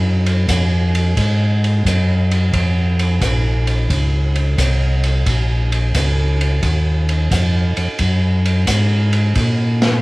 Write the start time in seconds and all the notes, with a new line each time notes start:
Already playing: F#2
0.26 ride
0.48 F2, kick, hi-hat pedal, ride
0.95 ride
1.17 G#2, kick, ride
1.64 ride
1.85 F#2, kick, hi-hat pedal, ride
2.31 ride
2.53 F2, kick, ride
2.99 ride
3.21 A#1, kick, hi-hat pedal, ride
3.67 ride
3.90 C#2, kick, ride
4.35 ride
4.58 C2, kick, hi-hat pedal, ride
5.03 ride
5.26 A#1, kick, ride
5.72 ride
5.94 C#2, kick, hi-hat pedal, ride
6.41 ride
6.63 D#2, kick, ride
7.09 ride
7.31 F2, kick, hi-hat pedal, ride
7.77 F2, ride
7.99 F#2, kick, ride
8.46 ride
8.67 G#2, kick, hi-hat pedal, ride
9.13 ride
9.35 A#2, kick, ride
9.82 snare, ride